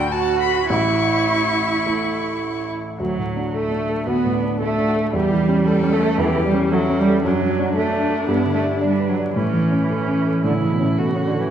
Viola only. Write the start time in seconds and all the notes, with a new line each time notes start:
Already playing: F#4
0.13 F#4
0.70 E4
3.00 F#3
3.54 A3
4.07 B3
4.61 A3
5.14 G3
5.93 A3
6.19 E3
6.46 G3
6.73 F#3
6.99 G3
7.25 D4
9.36 C#4
9.90 C#4
10.45 E4
10.99 F#4